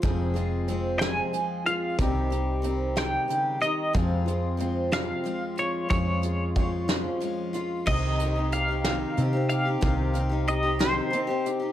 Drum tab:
CC |------|------|------|------|
HH |xxxxxx|xxxxxx|xxxxxx|xxxxxx|
SD |---o--|---o--|---o--|---o--|
BD |o-----|o-----|o-----|o-o---|

CC |x-----|------|
HH |-xxxxx|xxxxxx|
SD |---o--|---o--|
BD |o-----|o-----|